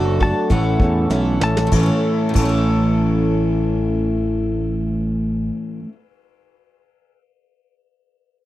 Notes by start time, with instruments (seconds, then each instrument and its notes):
Already playing: picked electric bass F#1, clean electric guitar F#3 A3 D4 F#4, twelve-string acoustic guitar A4
0.20 clean electric guitar A3 D4 F#4, twelve-string acoustic guitar A4, electric slide guitar A5, kick
0.50 picked electric bass A1, clean electric guitar A2 E3 A3 C#4 A4, twelve-string acoustic guitar E4, electric slide guitar F#5, kick, open hi-hat
0.80 picked electric bass E2, clean electric guitar A2 E3 A3 C#4 A4, kick
1.09 picked electric bass B1, clean electric guitar E3 A3 C#4 A4, twelve-string acoustic guitar E4, snare
1.40 picked electric bass A1, clean electric guitar A3 C#4 A4, electric slide guitar A5, snare
1.57 snare
1.67 twelve-string acoustic guitar A2
1.71 picked electric bass A1, clean electric guitar A2 E3 A3 C#4 A4, kick, ride
1.80 twelve-string acoustic guitar C#4 E4
1.86 twelve-string acoustic guitar A4
2.29 twelve-string acoustic guitar A2
2.34 picked electric bass A1, clean electric guitar A2 E3 A3 C#4 A4, kick, ride
2.42 twelve-string acoustic guitar C#4 E4
2.49 twelve-string acoustic guitar A4